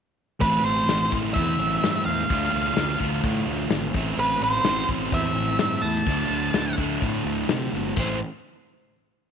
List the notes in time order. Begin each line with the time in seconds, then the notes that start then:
0.40 A1 A2 E3 A3 C4 E4 B4, kick, open hi-hat
0.62 A1 C5
0.88 A1, snare, open hi-hat
1.11 A1 A2 E3 A3 C4 E4, kick
1.34 E2 E5, kick, open hi-hat
1.58 A1
1.83 G2, snare, open hi-hat
2.05 E2 F5
2.19 snare
2.29 D2 D3 A3 D4 F4, kick, open hi-hat
2.53 D2
2.77 D2, snare, open hi-hat
2.98 D2 D3 A3 D4 F4, kick
3.23 A2, kick, open hi-hat
3.47 D2
3.70 G#1, snare, open hi-hat
3.93 A1 A2 E3 A3 C4 E4, kick, snare
4.17 A1 B4, open hi-hat
4.41 A1 C5
4.64 A1 A2 E3 A3 C4 E4, snare, open hi-hat
4.89 A1, kick
5.12 E2 E5, kick, open hi-hat
5.35 A1
5.58 G2, snare, open hi-hat
5.82 E2 A5
5.96 snare
6.06 D2 D3 A3 D4 E4, kick, open hi-hat
6.29 D2
6.54 D2, snare, open hi-hat
6.77 D2 D3 A3 D4 E4, kick
7.02 A2, kick, open hi-hat
7.25 D2
7.49 C3, snare, open hi-hat
7.73 G1, snare
7.96 A1 A2 E3 A3 C4 E4 C5, kick, crash